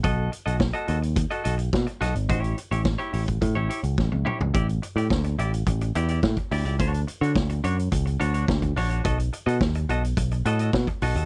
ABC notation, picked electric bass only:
X:1
M:4/4
L:1/16
Q:1/4=107
K:Amix
V:1 name="Picked electric bass" clef=bass
B,,,2 z B,,,2 z ^D,,3 z B,,,2 B,, z B,,, ^G,,, | A,,,2 z A,,,2 z A,,,2 A,, A,,, z C,, A,,, C,, z C,, | A,,,2 z A,, D,,2 A,,,2 A,,,2 E,,2 A,, z D,, C,, | D,,2 z D, D,,2 F,,2 C,,2 D,,2 D,,2 _B,,,2 |
B,,,2 z B,, ^D,,2 B,,,2 B,,,2 A,,2 B,, z B,,, D,, |]